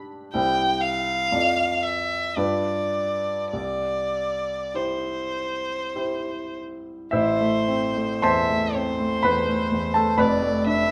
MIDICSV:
0, 0, Header, 1, 3, 480
1, 0, Start_track
1, 0, Key_signature, 0, "major"
1, 0, Tempo, 974026
1, 166, Time_signature, 3, 2, 24, 8
1, 647, Tempo, 1056338
1, 1127, Tempo, 1190476
1, 3047, Key_signature, 0, "minor"
1, 3047, Tempo, 1107011
1, 3527, Tempo, 1008403
1, 4007, Tempo, 953895
1, 4845, End_track
2, 0, Start_track
2, 0, Title_t, "Violin"
2, 0, Program_c, 0, 40
2, 165, Note_on_c, 0, 79, 62
2, 400, Note_on_c, 0, 77, 66
2, 407, Note_off_c, 0, 79, 0
2, 880, Note_on_c, 0, 76, 60
2, 886, Note_off_c, 0, 77, 0
2, 1126, Note_on_c, 0, 74, 54
2, 1132, Note_off_c, 0, 76, 0
2, 1588, Note_off_c, 0, 74, 0
2, 1590, Note_on_c, 0, 74, 56
2, 2090, Note_on_c, 0, 72, 47
2, 2096, Note_off_c, 0, 74, 0
2, 2821, Note_off_c, 0, 72, 0
2, 3050, Note_on_c, 0, 72, 56
2, 3522, Note_on_c, 0, 76, 51
2, 3529, Note_off_c, 0, 72, 0
2, 3772, Note_on_c, 0, 72, 54
2, 3779, Note_off_c, 0, 76, 0
2, 4486, Note_on_c, 0, 74, 56
2, 4493, Note_off_c, 0, 72, 0
2, 4721, Note_off_c, 0, 74, 0
2, 4724, Note_on_c, 0, 76, 61
2, 4845, Note_off_c, 0, 76, 0
2, 4845, End_track
3, 0, Start_track
3, 0, Title_t, "Grand piano"
3, 0, Program_c, 1, 0
3, 0, Control_c, 1, 64, 127
3, 0, Note_on_c, 1, 62, 40
3, 0, Note_on_c, 1, 67, 40
3, 0, Note_on_c, 1, 74, 39
3, 145, Note_off_c, 1, 62, 0
3, 146, Note_off_c, 1, 67, 0
3, 147, Note_off_c, 1, 74, 0
3, 166, Note_on_c, 1, 64, 37
3, 170, Note_on_c, 1, 36, 50
3, 170, Note_on_c, 1, 67, 34
3, 173, Note_on_c, 1, 72, 33
3, 175, Control_c, 1, 64, 0
3, 248, Control_c, 1, 64, 127
3, 627, Note_off_c, 1, 64, 0
3, 630, Note_off_c, 1, 67, 0
3, 631, Note_off_c, 1, 72, 0
3, 635, Note_off_c, 1, 36, 0
3, 650, Note_on_c, 1, 41, 44
3, 651, Note_on_c, 1, 65, 36
3, 652, Note_on_c, 1, 69, 34
3, 655, Control_c, 1, 64, 0
3, 656, Note_on_c, 1, 74, 35
3, 719, Control_c, 1, 64, 127
3, 1111, Note_off_c, 1, 65, 0
3, 1111, Note_off_c, 1, 69, 0
3, 1113, Note_off_c, 1, 74, 0
3, 1114, Note_off_c, 1, 41, 0
3, 1126, Note_on_c, 1, 43, 48
3, 1126, Note_on_c, 1, 65, 33
3, 1127, Note_on_c, 1, 67, 31
3, 1131, Note_on_c, 1, 71, 33
3, 1134, Control_c, 1, 64, 0
3, 1215, Control_c, 1, 64, 127
3, 1581, Note_off_c, 1, 65, 0
3, 1581, Note_off_c, 1, 67, 0
3, 1583, Note_off_c, 1, 43, 0
3, 1584, Note_off_c, 1, 71, 0
3, 1595, Note_on_c, 1, 36, 41
3, 1606, Control_c, 1, 64, 0
3, 1704, Control_c, 1, 64, 127
3, 2071, Note_off_c, 1, 36, 0
3, 2085, Note_on_c, 1, 64, 29
3, 2089, Note_on_c, 1, 67, 28
3, 2091, Note_on_c, 1, 72, 34
3, 2557, Note_off_c, 1, 64, 0
3, 2559, Note_off_c, 1, 67, 0
3, 2560, Note_off_c, 1, 72, 0
3, 2573, Note_on_c, 1, 64, 31
3, 2573, Note_on_c, 1, 67, 28
3, 2577, Note_on_c, 1, 72, 33
3, 3031, Note_off_c, 1, 64, 0
3, 3031, Note_off_c, 1, 67, 0
3, 3033, Note_off_c, 1, 72, 0
3, 3039, Note_on_c, 1, 76, 74
3, 3045, Note_on_c, 1, 33, 47
3, 3045, Note_on_c, 1, 72, 54
3, 3046, Note_on_c, 1, 64, 59
3, 3054, Control_c, 1, 64, 0
3, 3131, Control_c, 1, 64, 127
3, 3164, Note_on_c, 1, 57, 40
3, 3284, Note_on_c, 1, 60, 36
3, 3360, Note_off_c, 1, 57, 0
3, 3406, Note_on_c, 1, 57, 36
3, 3479, Note_off_c, 1, 60, 0
3, 3508, Note_off_c, 1, 72, 0
3, 3509, Note_off_c, 1, 64, 0
3, 3521, Note_on_c, 1, 84, 83
3, 3522, Note_off_c, 1, 76, 0
3, 3524, Note_on_c, 1, 40, 42
3, 3524, Note_on_c, 1, 81, 62
3, 3525, Note_on_c, 1, 72, 61
3, 3602, Note_off_c, 1, 57, 0
3, 3649, Note_on_c, 1, 57, 36
3, 3724, Note_off_c, 1, 40, 0
3, 3769, Note_on_c, 1, 60, 34
3, 3843, Note_off_c, 1, 57, 0
3, 3887, Note_on_c, 1, 57, 37
3, 3959, Note_off_c, 1, 60, 0
3, 3987, Note_off_c, 1, 72, 0
3, 3987, Note_off_c, 1, 81, 0
3, 3997, Note_on_c, 1, 83, 78
3, 4004, Note_off_c, 1, 84, 0
3, 4005, Note_on_c, 1, 40, 40
3, 4005, Note_on_c, 1, 71, 64
3, 4078, Note_off_c, 1, 57, 0
3, 4125, Note_on_c, 1, 57, 36
3, 4200, Note_off_c, 1, 40, 0
3, 4244, Note_on_c, 1, 40, 35
3, 4319, Note_off_c, 1, 57, 0
3, 4348, Note_off_c, 1, 71, 0
3, 4356, Note_on_c, 1, 81, 79
3, 4362, Note_on_c, 1, 69, 55
3, 4363, Note_on_c, 1, 57, 37
3, 4364, Note_off_c, 1, 83, 0
3, 4439, Note_off_c, 1, 40, 0
3, 4467, Note_off_c, 1, 33, 0
3, 4473, Note_on_c, 1, 29, 51
3, 4475, Note_on_c, 1, 83, 77
3, 4477, Note_off_c, 1, 69, 0
3, 4478, Note_on_c, 1, 41, 46
3, 4480, Note_on_c, 1, 71, 64
3, 4482, Note_off_c, 1, 81, 0
3, 4486, Note_off_c, 1, 57, 0
3, 4498, Control_c, 1, 64, 0
3, 4566, Control_c, 1, 64, 127
3, 4597, Note_on_c, 1, 57, 41
3, 4721, Note_on_c, 1, 62, 42
3, 4794, Note_off_c, 1, 57, 0
3, 4845, Note_off_c, 1, 29, 0
3, 4845, Note_off_c, 1, 41, 0
3, 4845, Note_off_c, 1, 62, 0
3, 4845, Note_off_c, 1, 71, 0
3, 4845, Note_off_c, 1, 83, 0
3, 4845, End_track
0, 0, End_of_file